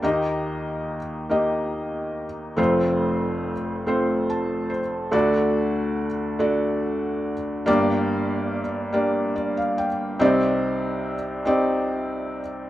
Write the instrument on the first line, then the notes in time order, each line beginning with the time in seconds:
felt piano
0.02 D#2 D#3 A#3 D#4 G4 D#5
1.29 A#3 D#4 G4 D#5
2.56 F1 F2 A3 C4 F4 C5
3.86 A3 C4 F4 C5
4.30 A5
4.70 C5
5.11 D2 D3 A3 D4 F#4 D5
6.39 A3 D4 F#4 D5
7.66 G1 G2 A#3 D4 G4 D5
8.93 A#3 D4 G4 D5
9.36 D5
9.57 F5
9.78 G5
10.19 C2 C3 C4 D#4 G4 D5
11.45 C4 D#4 G4 D5